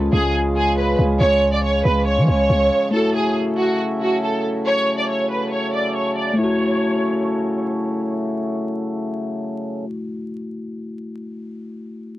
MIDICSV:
0, 0, Header, 1, 5, 480
1, 0, Start_track
1, 0, Key_signature, 3, "minor"
1, 0, Tempo, 431655
1, 1340, Time_signature, 4, 2, 24, 8
1, 13551, End_track
2, 0, Start_track
2, 0, Title_t, "Violin section"
2, 0, Program_c, 0, 48
2, 139, Note_on_c, 0, 68, 93
2, 362, Note_off_c, 0, 68, 0
2, 622, Note_on_c, 0, 68, 87
2, 843, Note_off_c, 0, 68, 0
2, 860, Note_on_c, 0, 71, 81
2, 1082, Note_off_c, 0, 71, 0
2, 1340, Note_on_c, 0, 73, 116
2, 1678, Note_off_c, 0, 73, 0
2, 1700, Note_on_c, 0, 74, 79
2, 1811, Note_off_c, 0, 74, 0
2, 1820, Note_on_c, 0, 73, 98
2, 2043, Note_off_c, 0, 73, 0
2, 2060, Note_on_c, 0, 71, 90
2, 2282, Note_off_c, 0, 71, 0
2, 2299, Note_on_c, 0, 73, 88
2, 2522, Note_off_c, 0, 73, 0
2, 2540, Note_on_c, 0, 73, 98
2, 3217, Note_off_c, 0, 73, 0
2, 3260, Note_on_c, 0, 69, 98
2, 3483, Note_off_c, 0, 69, 0
2, 3501, Note_on_c, 0, 68, 83
2, 3723, Note_off_c, 0, 68, 0
2, 3981, Note_on_c, 0, 66, 84
2, 4203, Note_off_c, 0, 66, 0
2, 4460, Note_on_c, 0, 66, 83
2, 4682, Note_off_c, 0, 66, 0
2, 4701, Note_on_c, 0, 69, 71
2, 4923, Note_off_c, 0, 69, 0
2, 5181, Note_on_c, 0, 73, 120
2, 5519, Note_off_c, 0, 73, 0
2, 5542, Note_on_c, 0, 74, 73
2, 5652, Note_off_c, 0, 74, 0
2, 5661, Note_on_c, 0, 73, 79
2, 5883, Note_off_c, 0, 73, 0
2, 5899, Note_on_c, 0, 71, 78
2, 6122, Note_off_c, 0, 71, 0
2, 6141, Note_on_c, 0, 73, 84
2, 6363, Note_off_c, 0, 73, 0
2, 6380, Note_on_c, 0, 74, 76
2, 6602, Note_off_c, 0, 74, 0
2, 6620, Note_on_c, 0, 73, 80
2, 6842, Note_off_c, 0, 73, 0
2, 6860, Note_on_c, 0, 74, 74
2, 7082, Note_off_c, 0, 74, 0
2, 7100, Note_on_c, 0, 73, 92
2, 8495, Note_off_c, 0, 73, 0
2, 13551, End_track
3, 0, Start_track
3, 0, Title_t, "Tine electric piano"
3, 0, Program_c, 1, 4
3, 0, Control_c, 1, 64, 127
3, 0, Note_on_c, 1, 56, 68
3, 0, Note_on_c, 1, 61, 65
3, 0, Note_on_c, 1, 65, 62
3, 0, Note_on_c, 1, 68, 79
3, 3205, Note_off_c, 1, 56, 0
3, 3214, Note_off_c, 1, 61, 0
3, 3224, Note_off_c, 1, 65, 0
3, 3233, Note_off_c, 1, 68, 0
3, 3233, Note_on_c, 1, 57, 67
3, 3262, Note_on_c, 1, 64, 60
3, 3273, Control_c, 1, 64, 0
3, 3290, Note_on_c, 1, 66, 73
3, 3467, Control_c, 1, 64, 127
3, 7030, Note_off_c, 1, 57, 0
3, 7044, Note_on_c, 1, 57, 83
3, 7056, Note_off_c, 1, 64, 0
3, 7070, Note_off_c, 1, 66, 0
3, 7100, Note_on_c, 1, 64, 75
3, 7115, Control_c, 1, 64, 0
3, 7157, Note_on_c, 1, 66, 90
3, 7337, Control_c, 1, 64, 127
3, 10896, Note_off_c, 1, 57, 0
3, 10952, Note_off_c, 1, 64, 0
3, 11009, Note_off_c, 1, 66, 0
3, 13551, End_track
4, 0, Start_track
4, 0, Title_t, "Harmonium"
4, 0, Program_c, 2, 20
4, 0, Note_on_c, 2, 49, 82
4, 0, Note_on_c, 2, 53, 77
4, 0, Note_on_c, 2, 56, 74
4, 0, Note_on_c, 2, 65, 92
4, 3214, Note_off_c, 2, 49, 0
4, 3221, Note_off_c, 2, 53, 0
4, 3221, Note_off_c, 2, 56, 0
4, 3221, Note_off_c, 2, 65, 0
4, 3258, Note_on_c, 2, 64, 86
4, 3259, Note_on_c, 2, 49, 79
4, 3259, Note_on_c, 2, 54, 72
4, 3259, Note_on_c, 2, 57, 70
4, 7060, Note_off_c, 2, 64, 0
4, 7061, Note_off_c, 2, 49, 0
4, 7061, Note_off_c, 2, 54, 0
4, 7061, Note_off_c, 2, 57, 0
4, 7100, Note_on_c, 2, 57, 70
4, 7101, Note_on_c, 2, 49, 76
4, 7101, Note_on_c, 2, 54, 70
4, 7101, Note_on_c, 2, 64, 81
4, 10953, Note_off_c, 2, 54, 0
4, 10953, Note_off_c, 2, 57, 0
4, 10953, Note_off_c, 2, 64, 0
4, 10954, Note_off_c, 2, 49, 0
4, 13551, End_track
5, 0, Start_track
5, 0, Title_t, "808-style bass"
5, 0, Program_c, 3, 38
5, 141, Note_on_c, 3, 37, 102
5, 1062, Note_off_c, 3, 37, 0
5, 1100, Note_on_c, 3, 37, 107
5, 1330, Note_off_c, 3, 37, 0
5, 1340, Note_on_c, 3, 37, 117
5, 2031, Note_off_c, 3, 37, 0
5, 2060, Note_on_c, 3, 37, 109
5, 2420, Note_on_c, 3, 53, 99
5, 2437, Note_off_c, 3, 37, 0
5, 2534, Note_off_c, 3, 53, 0
5, 2540, Note_on_c, 3, 37, 105
5, 2770, Note_off_c, 3, 37, 0
5, 2780, Note_on_c, 3, 37, 111
5, 3010, Note_off_c, 3, 37, 0
5, 13551, End_track
0, 0, End_of_file